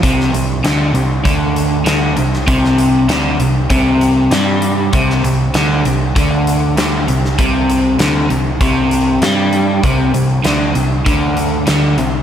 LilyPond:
<<
  \new Staff \with { instrumentName = "Overdriven electric guitar" } { \clef bass \time 4/4 \key c \major \tempo 4 = 98 c8 c8 d8 c8 d4 d8 c8 | c4 d8 c8 c4 g4 | c8 c8 d8 c8 d4 d8 c8 | c4 d8 c8 c4 g4 |
c8 c8 d8 c8 d4 d8 c8 | }
  \new Staff \with { instrumentName = "Picked electric bass" } { \clef bass \time 4/4 \key c \major c,8 c,8 d,8 c,8 d,4 d,8 c,8 | c,4 d,8 c,8 c,4 g,4 | c,8 c,8 d,8 c,8 d,4 d,8 c,8 | c,4 d,8 c,8 c,4 g,4 |
c,8 c,8 d,8 c,8 d,4 d,8 c,8 | }
  \new DrumStaff \with { instrumentName = "Drums" } \drummode { \time 4/4 <hh bd>16 sn16 hh8 <hh sn>8 hh8 <hh bd>8 hh8 <hh sn>8 hh16 sn16 | <hh bd>16 sn16 hh8 <hh sn>8 hh8 <hh bd>8 hh8 <hh sn>8 hh8 | <hh bd>16 sn16 hh8 <hh sn>8 hh8 <hh bd>8 hh8 <hh sn>8 hh16 sn16 | <hh bd>8 hh8 <hh sn>8 hh8 <hh bd>8 hh8 <hh sn>8 hh8 |
<hh bd>8 hh8 <hh sn>8 hh8 <hh bd>8 hh8 <hh sn>8 hh8 | }
>>